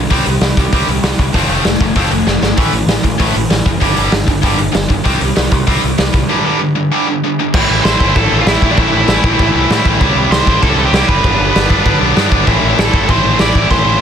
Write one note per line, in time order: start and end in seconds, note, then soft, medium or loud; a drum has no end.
0.10 0.20 C2 medium
0.10 0.25 C3 medium
0.10 0.25 G3 medium
0.10 0.25 C4 loud
0.10 kick medium
0.10 open hi-hat medium
0.26 0.36 C2 medium
0.26 0.40 C3 medium
0.26 0.40 G3 medium
0.26 open hi-hat medium
0.41 0.51 C2 medium
0.41 0.55 C3 medium
0.41 0.55 G3 medium
0.41 snare loud
0.41 open hi-hat medium
0.57 0.66 C2 medium
0.57 0.71 C3 medium
0.57 0.71 G3 medium
0.57 kick medium
0.57 open hi-hat medium
0.72 0.82 C2 medium
0.72 0.87 C3 medium
0.72 0.87 G3 loud
0.72 0.87 C4 loud
0.72 kick loud
0.72 open hi-hat medium
0.88 0.98 C2 medium
0.88 1.02 C3 medium
0.88 1.02 G3 medium
0.88 open hi-hat medium
1.03 1.12 C2 medium
1.03 1.18 C3 medium
1.03 1.18 G3 medium
1.03 snare loud
1.03 open hi-hat medium
1.19 1.28 C2 medium
1.19 1.33 C3 medium
1.19 1.33 G3 medium
1.19 kick medium
1.19 open hi-hat medium
1.34 1.43 F1 medium
1.34 1.48 F3 medium
1.34 1.48 A3 medium
1.34 1.49 C4 medium
1.34 kick loud
1.34 open hi-hat medium
1.49 1.59 F1 medium
1.49 1.64 F3 medium
1.49 1.64 A3 medium
1.49 1.64 C4 medium
1.49 open hi-hat medium
1.65 1.75 F1 medium
1.65 1.79 F3 medium
1.65 1.79 A3 medium
1.65 snare loud
1.65 open hi-hat medium
1.80 1.90 F1 medium
1.80 1.95 F3 medium
1.80 1.95 A3 medium
1.80 kick medium
1.80 open hi-hat soft
1.95 2.05 F1 medium
1.95 2.11 F3 medium
1.95 2.10 A3 medium
1.95 2.11 C4 medium
1.95 kick medium
1.95 open hi-hat medium
2.11 2.21 F1 medium
2.11 2.26 F3 medium
2.11 2.26 A3 medium
2.11 open hi-hat medium
2.27 2.36 F1 medium
2.27 2.41 F3 medium
2.27 2.41 A3 medium
2.27 snare medium
2.42 2.51 G1 medium
2.42 2.56 F3 medium
2.42 2.56 A3 medium
2.42 snare medium
2.57 2.67 A1 loud
2.57 2.72 A2 medium
2.57 2.72 E3 medium
2.57 2.73 A3 medium
2.57 kick loud
2.57 open hi-hat medium
2.71 2.82 A1 medium
2.71 2.87 A2 medium
2.71 2.87 E3 medium
2.71 open hi-hat medium
2.86 2.97 A1 medium
2.86 3.02 A2 medium
2.86 3.02 E3 medium
2.86 snare loud
2.86 open hi-hat medium
3.03 3.14 A1 medium
3.03 3.17 A2 medium
3.03 3.18 E3 medium
3.03 kick medium
3.03 open hi-hat medium
3.18 3.30 A1 medium
3.18 3.33 A2 medium
3.18 3.34 E3 medium
3.18 3.34 A3 medium
3.18 kick loud
3.18 open hi-hat medium
3.35 3.45 A1 medium
3.35 3.49 A2 medium
3.35 3.49 E3 medium
3.35 open hi-hat medium
3.50 3.60 A1 medium
3.50 3.64 A2 medium
3.50 3.65 E3 medium
3.50 snare loud
3.50 open hi-hat medium
3.66 3.76 F1 medium
3.66 3.80 A2 medium
3.66 3.80 E3 medium
3.66 kick medium
3.66 open hi-hat medium
3.80 3.91 G1 loud
3.80 3.94 G2 medium
3.80 3.95 D3 medium
3.80 3.96 G3 medium
3.80 kick medium
3.80 open hi-hat medium
3.96 4.07 G1 medium
3.96 4.11 G2 medium
3.96 4.11 D3 loud
3.96 4.12 G3 loud
3.96 open hi-hat medium
4.12 4.22 G1 medium
4.12 4.25 G2 medium
4.12 4.25 D3 medium
4.12 snare loud
4.12 open hi-hat medium
4.26 4.38 G1 medium
4.26 4.40 G2 medium
4.26 4.41 D3 medium
4.26 kick medium
4.26 open hi-hat medium
4.42 4.53 G1 medium
4.42 4.57 G2 medium
4.42 4.57 D3 loud
4.42 4.58 G3 medium
4.42 kick loud
4.42 open hi-hat medium
4.58 4.68 G1 medium
4.58 4.71 G2 medium
4.58 4.72 D3 medium
4.58 open hi-hat medium
4.72 4.84 G1 medium
4.72 4.87 G2 medium
4.72 4.88 D3 medium
4.72 snare loud
4.72 open hi-hat medium
4.88 4.99 G1 medium
4.88 5.03 G2 medium
4.88 5.03 D3 medium
4.88 kick medium
4.88 open hi-hat medium
5.04 5.15 C2 medium
5.04 5.19 C3 medium
5.04 5.20 G3 medium
5.04 5.20 C4 medium
5.04 kick medium
5.04 open hi-hat medium
5.21 5.30 C2 medium
5.21 5.35 C3 medium
5.21 5.35 G3 medium
5.21 open hi-hat medium
5.36 5.47 C2 medium
5.36 5.50 C3 medium
5.36 5.50 G3 medium
5.36 snare loud
5.36 open hi-hat medium
5.51 5.62 C2 loud
5.51 5.66 C3 medium
5.51 5.66 G3 medium
5.51 kick medium
5.51 open hi-hat medium
5.67 5.77 C2 medium
5.67 5.81 C3 medium
5.67 5.81 G3 loud
5.67 5.82 C4 loud
5.67 kick loud
5.67 open hi-hat medium
5.82 5.93 C2 medium
5.82 5.96 C3 medium
5.82 5.97 G3 medium
5.82 open hi-hat medium
5.98 6.09 C2 medium
5.98 6.12 C3 medium
5.98 6.12 G3 medium
5.98 snare loud
5.98 open hi-hat medium
6.13 6.24 C2 medium
6.13 6.27 C3 medium
6.13 6.28 G3 medium
6.13 kick medium
6.13 open hi-hat medium
6.29 6.43 G2 medium
6.29 6.44 D3 medium
6.29 6.44 G3 loud
6.44 6.59 G2 medium
6.44 6.59 D3 medium
6.44 6.59 G3 medium
6.60 6.74 G2 medium
6.60 6.74 D3 medium
6.75 6.89 G2 medium
6.75 6.90 D3 medium
6.91 7.06 G2 medium
6.91 7.06 D3 medium
6.91 7.07 G3 medium
7.07 7.21 G2 medium
7.07 7.21 D3 medium
7.24 7.37 G2 medium
7.24 7.37 D3 medium
7.39 7.52 G2 medium
7.39 7.53 D3 medium
7.54 7.64 A1 loud
7.54 7.84 A2 medium
7.54 7.85 E3 loud
7.54 7.86 A3 medium
7.54 7.86 C4 loud
7.54 7.86 E4 medium
7.54 kick loud
7.54 crash loud
7.54 crash medium
7.69 7.79 A1 medium
7.84 7.95 A1 medium
7.84 8.01 A2 medium
7.84 8.01 E3 medium
7.84 8.00 A3 loud
7.84 8.00 C4 loud
7.84 7.99 E4 loud
7.84 8.13 C5 medium
7.84 8.16 C6 medium
7.84 snare loud
7.84 crash medium
8.00 8.10 G1 loud
8.00 8.15 A2 medium
8.00 8.16 E3 medium
8.00 8.16 A3 medium
8.00 8.17 C4 medium
8.00 8.18 E4 loud
8.00 kick medium
8.15 8.26 A1 loud
8.15 8.46 A2 loud
8.15 8.47 E3 loud
8.15 8.47 A3 loud
8.15 8.48 C4 loud
8.15 8.49 E4 loud
8.15 8.37 A4 medium
8.15 8.37 A5 loud
8.15 kick loud
8.15 crash medium
8.32 8.42 A1 medium
8.41 8.47 F4 medium
8.41 8.48 F5 medium
8.46 8.56 A1 medium
8.46 8.63 A2 medium
8.46 8.63 E3 medium
8.46 8.62 A3 medium
8.46 8.63 C4 medium
8.46 8.69 E4 medium
8.46 8.62 E4 loud
8.46 8.71 E5 medium
8.46 snare loud
8.46 crash medium
8.62 8.72 A1 medium
8.62 8.77 A2 medium
8.62 8.78 E3 medium
8.62 8.78 A3 loud
8.62 8.79 C4 loud
8.62 8.79 E4 loud
8.62 kick medium
8.71 8.78 D4 medium
8.71 8.79 D5 medium
8.77 8.87 A1 loud
8.77 9.08 A2 medium
8.77 9.09 E3 medium
8.77 9.09 A3 loud
8.77 9.10 C4 loud
8.77 9.82 E4 medium
8.77 9.10 E4 loud
8.77 9.86 E5 medium
8.77 kick loud
8.77 crash medium
8.93 9.03 A1 medium
9.08 9.18 A1 medium
9.08 9.25 A2 medium
9.08 9.25 E3 medium
9.08 9.25 A3 loud
9.08 9.25 C4 loud
9.08 9.24 E4 medium
9.08 snare loud
9.08 crash medium
9.24 9.34 A1 loud
9.24 9.38 A2 medium
9.24 9.39 E3 medium
9.24 9.39 A3 medium
9.24 9.40 C4 loud
9.24 9.40 E4 loud
9.24 kick loud
9.39 9.49 A1 medium
9.39 9.68 A2 loud
9.39 9.69 E3 loud
9.39 9.70 A3 loud
9.39 9.70 C4 loud
9.39 9.70 E4 loud
9.39 kick loud
9.39 crash medium
9.54 9.64 C2 medium
9.70 9.86 A2 medium
9.70 9.80 A2 medium
9.70 9.85 E3 loud
9.70 9.85 A3 medium
9.70 9.85 C4 medium
9.70 9.84 E4 loud
9.70 snare loud
9.70 crash medium
9.85 9.96 A1 medium
9.85 10.00 A2 medium
9.85 9.99 E3 medium
9.85 10.00 A3 medium
9.85 9.99 C4 medium
9.85 9.99 E4 loud
9.85 kick medium
9.99 10.11 C2 loud
9.99 10.29 C3 medium
9.99 10.31 G3 loud
9.99 10.31 C4 loud
9.99 10.31 E4 loud
9.99 kick loud
9.99 crash medium
10.15 10.25 C2 medium
10.30 10.40 C2 medium
10.30 10.46 C3 medium
10.30 10.47 G3 medium
10.30 10.46 C4 medium
10.30 10.45 E4 medium
10.30 10.61 C5 medium
10.30 10.63 C6 loud
10.30 snare loud
10.30 crash medium
10.46 10.57 A1 loud
10.46 10.60 C3 medium
10.46 10.61 G3 medium
10.46 10.62 C4 medium
10.46 10.62 E4 medium
10.46 kick medium
10.61 10.73 C2 loud
10.61 10.91 C3 medium
10.61 10.92 G3 medium
10.61 10.92 C4 loud
10.61 10.93 E4 loud
10.61 10.84 A4 medium
10.61 10.83 A5 loud
10.61 kick loud
10.61 crash medium
10.77 10.87 C2 medium
10.85 11.06 G4 medium
10.85 11.07 G5 medium
10.91 11.02 C2 medium
10.91 11.09 C3 medium
10.91 11.08 G3 medium
10.91 11.07 C4 loud
10.91 11.07 E4 loud
10.91 snare loud
10.91 crash medium
11.08 11.19 F#1 medium
11.08 11.24 C3 medium
11.08 11.23 G3 medium
11.08 11.23 C4 loud
11.08 11.23 E4 medium
11.08 11.97 B4 medium
11.08 11.97 B5 medium
11.08 kick medium
11.24 11.34 G1 loud
11.24 11.53 G2 loud
11.24 11.53 D3 loud
11.24 11.54 G3 medium
11.24 11.54 B3 loud
11.24 11.55 D4 loud
11.24 kick loud
11.24 crash medium
11.40 11.50 G1 medium
11.54 11.65 G1 loud
11.54 11.70 G2 medium
11.54 11.70 D3 medium
11.54 11.69 G3 loud
11.54 11.69 B3 loud
11.54 11.68 D4 loud
11.54 snare loud
11.54 crash medium
11.70 11.80 G1 loud
11.70 11.83 G2 medium
11.70 11.84 D3 medium
11.70 11.84 G3 medium
11.70 11.85 B3 loud
11.70 11.85 D4 loud
11.70 kick medium
11.84 11.95 G1 medium
11.84 12.14 G2 medium
11.84 12.14 D3 loud
11.84 12.15 G3 loud
11.84 12.15 B3 loud
11.84 12.16 D4 loud
11.84 kick loud
11.84 crash medium
12.01 12.11 B1 medium
12.15 12.32 G2 medium
12.15 12.27 G2 medium
12.15 12.32 D3 medium
12.15 12.31 G3 medium
12.15 12.30 B3 medium
12.15 12.30 D4 medium
12.15 snare loud
12.15 crash medium
12.31 12.41 G1 medium
12.31 12.46 G2 medium
12.31 12.46 D3 medium
12.31 12.46 G3 medium
12.31 12.46 B3 medium
12.31 12.46 D4 medium
12.31 kick medium
12.46 12.57 A1 loud
12.46 12.77 A2 medium
12.46 12.77 E3 loud
12.46 12.78 A3 medium
12.46 12.78 C4 loud
12.46 12.79 E4 loud
12.46 kick loud
12.46 crash medium
12.63 12.73 A1 medium
12.77 12.88 A1 loud
12.77 12.93 A2 medium
12.77 12.93 E3 medium
12.77 12.93 A3 loud
12.77 12.92 C4 loud
12.77 12.92 E4 loud
12.77 13.08 A4 medium
12.77 13.11 A5 medium
12.77 snare loud
12.77 crash medium
12.92 13.04 G1 medium
12.92 13.06 A2 medium
12.92 13.07 E3 medium
12.92 13.07 A3 medium
12.92 13.08 C4 medium
12.92 13.09 E4 medium
12.92 kick medium
13.07 13.19 A1 medium
13.07 13.37 A2 loud
13.07 13.39 E3 loud
13.07 13.38 A3 medium
13.07 13.39 C4 loud
13.07 13.40 E4 loud
13.07 13.38 C5 medium
13.07 13.41 C6 medium
13.07 kick loud
13.07 crash medium
13.25 13.35 A1 medium
13.38 13.50 A1 medium
13.38 13.54 A2 medium
13.38 13.55 E3 medium
13.38 13.53 A3 loud
13.38 13.54 C4 medium
13.38 13.53 E4 medium
13.38 13.69 D5 medium
13.38 13.70 D6 loud
13.38 snare loud
13.38 crash medium
13.54 13.65 A1 medium
13.54 13.68 A2 medium
13.54 13.69 E3 medium
13.54 13.69 A3 medium
13.54 13.71 C4 medium
13.54 13.70 E4 medium
13.54 kick medium
13.69 13.80 A1 loud
13.69 13.99 A2 medium
13.69 14.00 E3 medium
13.69 13.99 A3 loud
13.69 14.01 C4 loud
13.69 14.01 E4 loud
13.69 14.01 C5 medium
13.69 14.01 C6 loud
13.69 kick loud
13.69 crash medium
13.85 13.95 A1 medium